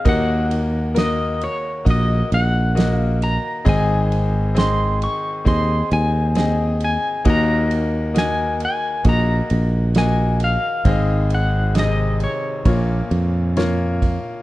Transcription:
0.05 D#2 D#3 A#3 F#4 D#5 F#5, kick, ride
0.51 ride
0.94 A#3 F#4 A#4 D#5, snare, ride
1.41 C#5, ride
1.85 A#1 A#3 F#4 D#5, kick, ride
1.90 D#5
2.32 A#1 F#5, ride
2.75 A#3 F#4 D#5, snare, ride
2.96 F5
3.22 A#5, ride
3.65 G#1 G#2 C4 G#4 D#5, kick, ride
3.69 G#5
4.12 ride
4.55 C4 G#4 D#5 C6, snare, ride
5.02 C#6, ride
5.45 D#2 C4 G#4 D#5 C6, kick, ride
5.91 D#2 G#5, ride
6.35 C4 G#4 D#5, snare, ride
6.80 G#5, ride
7.25 D#2 D#3 A#3 F#4 D#5, kick, ride
7.30 A#5
7.71 ride
8.14 A#3 F#4 D#5, snare, ride
8.18 G#5
8.60 ride
8.65 G#5
9.04 A#1 A#3 F#4 D#5, kick, ride
9.09 A#5
9.50 A#1, ride
9.95 A#3 F#4 D#5 G#5, snare, ride
10.40 ride
10.44 F5
10.85 G#1 G#2 C4 G#4 D#5, kick, ride
11.30 ride
11.34 F#5
11.75 C3 G#4 D#5, snare, ride
11.79 D#5
12.20 C#5, ride
12.65 A#1 A#2 A#3 F4 C#5, kick, ride
13.11 F2, ride
13.57 A#3 F4 C#5, snare, ride
14.02 kick, ride

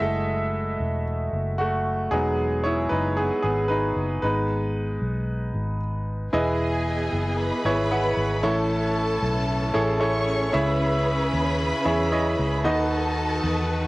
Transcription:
Already playing: G#3 A3 E4 F#4 D#5
0.00 F#1 A4 E5
0.80 E1
1.33 F#1
1.58 A3 F#4
2.11 E1 F#3 G#3 B3 D#4 G#4
2.64 E4 C#5
2.89 F#1 D#4 B4
3.17 B3 G#4
3.42 G#1 B3 G#4
3.68 D#4 B4
3.96 F#1
4.22 G#1 G#3 B3 D#4 B4
5.02 B1
5.54 G#1
6.33 E1 E3 B3 E4 G#4 B4 D#5 G#5
7.13 F#1
7.38 B4 B5
7.65 G#1 E4 G#4 B4 C#5
7.91 E4 G#4 B4 F#5
8.17 G#1
8.43 A1 A2 E3 A3 C#4 E4 A4 C#5 A5
9.23 B1
9.74 A1 E4 G#4 A4 C#5
10.00 E4 G#4 A4 C#5 C#6
10.53 C#2 C#3 E4 G#4 B4 C#5 E5 B5
11.33 D#2
11.85 E2 E4 G#4 C#5 E5
12.12 E4 G#4 C#5 D#5
12.39 C#2
12.64 D#2 D#3 D#4 F#4 A4 B4 D#5 A5
13.44 E2

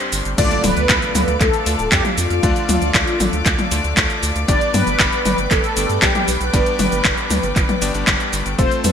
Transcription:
Already playing: G2 G3 C4 D4 G4 C5 D5 C6
0.12 G1, open hi-hat, cabasa
0.25 G1, closed hi-hat, cabasa
0.38 D2 D3 A3 D4 F4 A4 D5 F5 D6, kick, closed hi-hat, crash, impact, cabasa
0.51 closed hi-hat, cabasa
0.64 D1 B4, open hi-hat, high tom, cabasa
0.77 D2, closed hi-hat, cabasa
0.89 D2, kick, clap, closed hi-hat, cabasa
1.02 closed hi-hat, cabasa
1.15 D2, open hi-hat, high tom, cabasa
1.28 D2, closed hi-hat, cabasa
1.40 D2 A4, kick, clap, closed hi-hat, cabasa
1.54 closed hi-hat, cabasa
1.66 D2 D3 A3 D4 F4 D5, open hi-hat, cabasa
1.79 D1, closed hi-hat, cabasa
1.92 F2 G4, kick, clap, closed hi-hat, cabasa
2.05 closed hi-hat, high tom, cabasa
2.17 F2 F4, open hi-hat, cabasa
2.30 F2, closed hi-hat, cabasa
2.43 D2 D3 A3 D4 F4 D5, kick, closed hi-hat, cabasa
2.56 closed hi-hat, cabasa
2.69 D2, open hi-hat, high tom, cabasa
2.82 D2, closed hi-hat, cabasa
2.94 D2, kick, clap, closed hi-hat, cabasa
3.07 closed hi-hat, cabasa
3.20 A1, open hi-hat, high tom, cabasa
3.33 D2, closed hi-hat, cabasa
3.46 D2, kick, clap, closed hi-hat, cabasa
3.59 closed hi-hat, high tom, cabasa
3.71 D2 D3 A3 D4 F4 D5, open hi-hat, cabasa
3.84 D2, closed hi-hat, cabasa
3.97 D2, kick, clap, closed hi-hat, cabasa
4.10 closed hi-hat, cabasa
4.23 D2, open hi-hat, cabasa
4.36 D2, closed hi-hat, cabasa
4.48 G1 G2 B3 D4 G4 B4 D5 G5, kick, closed hi-hat, cabasa
4.61 closed hi-hat, cabasa
4.74 G2 B4, open hi-hat, high tom, cabasa
4.87 G1, closed hi-hat, cabasa
5.00 G1, kick, clap, closed hi-hat, cabasa
5.13 closed hi-hat, cabasa
5.25 G1, open hi-hat, high tom, cabasa
5.38 G1, closed hi-hat, cabasa
5.51 G1 A4, kick, clap, closed hi-hat, cabasa
5.64 closed hi-hat, cabasa
5.77 G1 G2 B3 D4 G4 D5, open hi-hat, cabasa
5.89 G2, closed hi-hat, cabasa
6.02 B1 G4, kick, clap, closed hi-hat, cabasa
6.15 closed hi-hat, high tom, cabasa
6.28 B1 B4, open hi-hat, cabasa
6.41 B1, closed hi-hat, cabasa
6.54 G1 G2 B3 D4 G4 D5, kick, closed hi-hat, cabasa
6.66 closed hi-hat, cabasa
6.79 G1, open hi-hat, high tom, cabasa
6.92 G1, closed hi-hat, cabasa
7.05 G1, kick, clap, closed hi-hat, cabasa
7.18 closed hi-hat, cabasa
7.30 D2, open hi-hat, high tom, cabasa
7.43 G1, closed hi-hat, cabasa
7.56 G1, kick, clap, closed hi-hat, cabasa
7.69 closed hi-hat, high tom, cabasa
7.82 G1 G2 B3 D4 G4 D5, open hi-hat, cabasa
7.95 G1 G2 B3 D4 G4 D5, closed hi-hat, cabasa
8.07 G1, kick, clap, closed hi-hat, cabasa
8.20 closed hi-hat, cabasa
8.33 G1, open hi-hat, cabasa
8.46 G1, closed hi-hat, cabasa
8.58 F1 A3 C4 F4 A4 C5 F5 A5, kick, closed hi-hat, cabasa
8.71 closed hi-hat, cabasa
8.84 F2 B4, open hi-hat, high tom, cabasa

